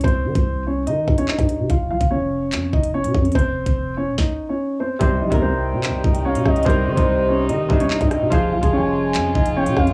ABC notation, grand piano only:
X:1
M:4/4
L:1/16
Q:1/4=145
K:Cphr
V:1 name="Grand piano"
[Cc]6 [Dd]2 [Ee]3 [Dd] [Ee]4 | [Ff]2 [Ff]2 [Dd]6 [Ee]2 [Dd]4 | [Cc]6 [Dd]2 [Ee]3 [Dd]3 [Cc]2 | [Cc]2 [Ee]2 [Cc]6 [Ee]2 [Dd]4 |
[Cc]6 [Dd]2 [Ee]3 [Dd] E4 | [Ff]2 [Ff]2 [Dd]6 [Ee]2 [Dd]4 |]